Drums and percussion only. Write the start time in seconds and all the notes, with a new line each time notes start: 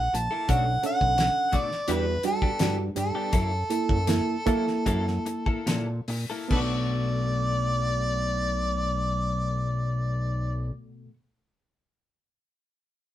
0.15 closed hi-hat
0.49 kick, closed hi-hat
0.83 closed hi-hat
1.01 kick
1.18 snare, closed hi-hat
1.53 kick, closed hi-hat
1.72 snare
1.88 closed hi-hat
2.23 closed hi-hat
2.42 kick
2.59 snare, closed hi-hat
2.96 closed hi-hat
3.33 kick, closed hi-hat
3.70 closed hi-hat
3.89 kick
4.07 snare, closed hi-hat
4.46 kick, closed hi-hat
4.68 snare
4.86 kick, closed hi-hat
5.07 snare
5.26 closed hi-hat
5.46 kick
5.67 snare, closed hi-hat
6.08 open hi-hat
6.51 kick, crash